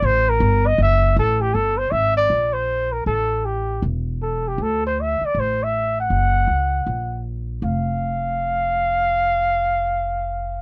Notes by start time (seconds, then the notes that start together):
0.02 A1 C5
0.29 A#4
0.40 G1
0.67 D#5
0.78 F#1
0.82 E5
1.16 A1 A4
1.41 G4
1.54 G1 A4
1.78 C5
1.91 G#1 E5
2.17 D5
2.30 A#1
2.53 C5
2.92 A#4
3.06 A1 A4
3.45 G4
3.82 E1
4.22 A4
4.48 G4
4.58 D2 A4
4.87 C5
5.01 E5
5.21 muted upright bass stroke
5.26 D5
5.35 A1
5.40 C5
5.63 E5
6.00 F#5
6.10 F#1
6.47 C#2
6.86 A#1
7.62 F1 F5